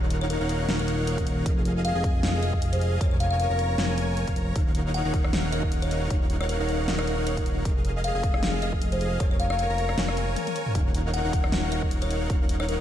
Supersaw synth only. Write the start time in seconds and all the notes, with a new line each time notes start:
Already playing: D#4 A#4 C#5 F5 F#5
0.41 D#4 A#4 C#5 F5 F#5
0.68 D#4 A#4 C#5 F5 F#5
1.46 G#4 D#5 F5
1.95 G#4 D#5 G#5
2.23 G#4 D#5 F5
3.01 A#4 C#5 G#5
3.50 A#4 C#5 A#5
3.78 A#4 C#5 G#5
4.27 A#4 C#5 F5
4.36 A#4 C#5 A#5
4.56 D#4 A#4 C#5 F5 F#5
5.05 D#4 A#4 C#5 F5 F#5
5.33 D#4 A#4 C#5 F5 F#5
6.11 D#4 A#4 C#5 F5 F#5
6.60 D#4 A#4 C#5 F5 F#5
6.88 D#4 A#4 C#5 F5 F#5
7.66 G#4
8.15 G#4 D#5 G#5
8.43 G#4 D#5 F5
9.20 A#4 C#5 G#5
9.70 A#4 C#5 A#5
9.98 A#4 C#5 G#5
10.75 D#4 A#4 C#5 F5 F#5
11.25 D#4 A#4 C#5 F5 F#5
11.53 D#4 A#4 C#5 F5 F#5
12.30 D#4 A#4 C#5 F#5